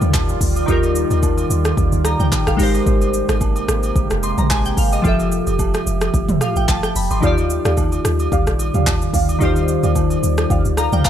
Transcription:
Already playing: synth keys D#3 D#4 F4 G4 D5, ambient pad D#3 G3 F4 D5
0.02 log drum bass D#2, mid tom, shaker
0.14 kick, clap, high agogo, low woodblock, shaker
0.29 shaker
0.41 log drum bass D2, kick, open hi-hat, shaker
0.56 high agogo, shaker
0.66 log drum bass D#2, synth keys D#3 D#4 F4, kick, shaker
0.71 synth keys G4 A#4
0.83 high agogo, shaker
0.95 shaker
1.11 log drum bass D#2, high agogo, shaker
1.23 kick, low woodblock, shaker
1.38 high agogo, shaker
1.50 log drum bass D#2, shaker
1.65 cross-stick, high agogo, shaker
1.77 log drum bass D#2, kick, shaker
1.92 log drum bass D2, shaker
2.05 synth keys A#5, cross-stick, high agogo, shaker
2.20 log drum bass D2, synth keys G5, mid tom, shaker
2.32 kick, clap, high agogo, low woodblock, shaker
2.47 log drum bass A#1, synth keys F5, cross-stick, shaker
2.57 log drum bass G#1, ambient pad C3 G#3 A#3 G4, synth keys G#3 D#4 G4, kick, open hi-hat, shaker
2.61 synth keys A#4 C5
2.74 high agogo, shaker
2.86 log drum bass G#1, kick, shaker
3.02 high agogo, shaker
3.14 shaker
3.29 log drum bass G#1, cross-stick, high agogo, shaker
3.41 kick, low woodblock, shaker
3.56 high agogo, shaker
3.68 log drum bass G#1, cross-stick, shaker
3.83 high agogo, shaker
3.96 log drum bass G1, kick, shaker
4.10 log drum bass F1, cross-stick, shaker
4.23 synth keys C6, high agogo, shaker
4.38 log drum bass A#1, synth keys A#5, mid tom, shaker
4.50 synth keys G#5, kick, clap, high agogo, low woodblock, shaker
4.65 synth keys G5, shaker
4.77 log drum bass G#1, synth keys F5, kick, open hi-hat, shaker
4.92 synth keys D#5, high agogo, shaker
5.02 log drum bass F1, synth keys F3 F4 G4, ambient pad F3 A3 E5, kick, shaker
5.07 synth keys A4 E5
5.20 high agogo, shaker
5.32 shaker
5.47 log drum bass F1, high agogo, shaker
5.59 kick, low woodblock, shaker
5.74 cross-stick, high agogo, shaker
5.86 log drum bass F1, shaker
6.01 cross-stick, high agogo, shaker
6.14 log drum bass G1, kick, shaker
6.29 log drum bass F1, mid tom, shaker
6.41 synth keys F5, cross-stick, high agogo, shaker
6.56 log drum bass A1, synth keys G5, shaker
6.68 log drum bass G1, synth keys A5, kick, clap, high agogo, low woodblock, shaker
6.83 synth keys G5, cross-stick, shaker
6.96 log drum bass F1, synth keys B5, open hi-hat, shaker
7.11 log drum bass G1, synth keys C6, high agogo, shaker
7.20 log drum bass D#2, synth keys D#3 D#4 F4, ambient pad D#3 G3 F4 D5, synth stab G4 D5 F5, kick, shaker
7.25 synth keys G4 D5
7.38 high agogo, shaker
7.50 shaker
7.65 log drum bass D#2, synth stab G4 D5 F5, cross-stick, high agogo, shaker
7.77 kick, low woodblock, shaker
7.92 high agogo, shaker
8.05 log drum bass D#2, cross-stick, shaker
8.19 high agogo, shaker
8.32 log drum bass D2, synth stab G4 D5 F5, kick, shaker
8.47 log drum bass A#1, cross-stick, shaker
8.59 high agogo, shaker
8.74 log drum bass D#2, synth stab G4 D5 F5, mid tom, shaker
8.87 kick, clap, high agogo, low woodblock, shaker
9.02 shaker
9.13 log drum bass D2, synth stab G4 D5 F5, kick, open hi-hat, shaker
9.29 high agogo, shaker
9.39 log drum bass D#2, synth keys D#3 D#4 F4, synth stab G4 D5 F5, kick, shaker
9.43 synth keys G4 C5
9.56 high agogo, shaker
9.68 shaker
9.83 log drum bass D#2, synth stab G4 D5 F5, high agogo, shaker
9.95 kick, low woodblock, shaker
10.10 high agogo, shaker
10.23 log drum bass D#2, shaker
10.38 cross-stick, high agogo, shaker
10.50 log drum bass D#2, synth stab G4 D5 F5, kick, shaker
10.65 log drum bass D2, shaker
10.77 synth keys F5 A#5, cross-stick, high agogo, shaker
10.92 log drum bass D2, synth stab G4 D5 F5, synth keys G5, mid tom, shaker
11.05 synth keys F5 A#5, kick, clap, high agogo, low woodblock, shaker

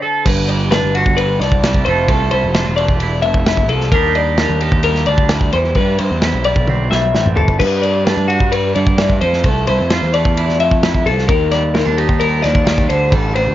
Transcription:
Already playing: clean electric guitar D3 G3 C4 E4
0.02 clean electric guitar A4
0.25 picked electric bass G1, clean electric guitar G2 B4, kick, crash
0.48 clean electric guitar G3 D5, ride
0.71 clean electric guitar D4 B4, snare, ride
0.83 picked electric bass G1
0.95 clean electric guitar F#4, ride
1.06 picked electric bass G1, kick
1.17 clean electric guitar G3 B4, ride
1.39 picked electric bass C2, clean electric guitar D4 D5, snare, ride
1.52 kick
1.63 clean electric guitar G3, snare, ride
1.74 kick
1.85 picked electric bass F1, clean electric guitar F3 A3 E4 F4 A4 C5, ride
2.08 picked electric bass C2, clean electric guitar A3 A4, kick, ride
2.31 picked electric bass C2, clean electric guitar E4 C5, ride
2.44 picked electric bass F1
2.55 clean electric guitar D4, snare, ride
2.66 picked electric bass E1, clean electric guitar F4
2.76 clean electric guitar A3 D5, ride
2.88 picked electric bass E1, kick
3.00 clean electric guitar E4, ride
3.22 picked electric bass F1, clean electric guitar A3 E5, ride
3.34 kick
3.46 clean electric guitar E4, snare, ride
3.57 kick
3.69 picked electric bass C2, clean electric guitar F3 A4, ride
3.80 snare
3.92 picked electric bass D#2, clean electric guitar G3 D4 D#4 G4 A#4, kick, ride
4.15 clean electric guitar G3 D5, ride
4.38 clean electric guitar D4 A#4, snare, ride
4.50 picked electric bass D#2
4.61 clean electric guitar D#4 G4, ride
4.72 picked electric bass D#2, kick
4.83 clean electric guitar G3 A#4, ride
4.95 snare
5.06 picked electric bass D2, clean electric guitar D4 D5, ride
5.18 kick
5.29 clean electric guitar G3, snare, ride
5.41 kick
5.53 picked electric bass E2, clean electric guitar E3 C5, ride
5.64 snare
5.75 picked electric bass G2, clean electric guitar G3 B4, kick, ride
5.99 picked electric bass G2, clean electric guitar C4 C5, ride
6.11 picked electric bass E2
6.22 clean electric guitar E4, snare, ride
6.34 picked electric bass B1
6.44 clean electric guitar G3 D5, ride
6.56 picked electric bass B1, kick
6.67 clean electric guitar C4, high tom
6.91 picked electric bass B1, clean electric guitar G3 E5, snare
7.15 picked electric bass A1, clean electric guitar C4, snare
7.26 mid tom
7.35 picked electric bass G1, clean electric guitar E3 A4, floor tom
7.48 kick
7.59 clean electric guitar G2 B4, picked electric bass G2, kick, crash
7.82 clean electric guitar G3 D5, ride
8.05 clean electric guitar D4 B4, snare, ride
8.17 picked electric bass G2
8.28 clean electric guitar F#4, ride
8.41 picked electric bass G2, kick
8.52 clean electric guitar G3 B4, ride
8.75 picked electric bass G2, clean electric guitar D3 D5, ride
8.86 kick
8.97 clean electric guitar E3, snare, ride
9.09 kick
9.21 picked electric bass F2, clean electric guitar F3 C5, ride
9.33 snare
9.44 picked electric bass C2, clean electric guitar A3 A4, kick, ride
9.67 picked electric bass C2, clean electric guitar E4 C5, ride
9.80 picked electric bass F2
9.90 clean electric guitar F4, snare, ride
10.03 picked electric bass E2
10.13 clean electric guitar A3 D5, ride
10.25 picked electric bass E2, kick
10.37 clean electric guitar E4, ride
10.49 snare
10.59 picked electric bass F2, clean electric guitar A3 E5, ride
10.71 kick
10.83 clean electric guitar E4, snare, ride
10.94 kick
11.06 picked electric bass C2, clean electric guitar F3 A4, ride
11.18 snare
11.28 picked electric bass D#2, clean electric guitar D#3 A#4, kick, ride
11.51 clean electric guitar G3 D5, snare, ride
11.74 clean electric guitar C4 A#4, snare, ride
11.85 picked electric bass D#2, clean electric guitar D4
11.97 clean electric guitar D#4 G4, ride
12.09 picked electric bass D#2, kick
12.20 clean electric guitar G3 A#4, ride
12.41 picked electric bass D#2, clean electric guitar F3 D5, snare, ride
12.55 kick
12.65 clean electric guitar D#3, snare, ride
12.78 kick
12.88 picked electric bass D2, clean electric guitar D3 C5, ride
13.11 picked electric bass A1, clean electric guitar G3 A4, kick, ride
13.34 picked electric bass A1, clean electric guitar C4 C5, ride
13.47 picked electric bass D2

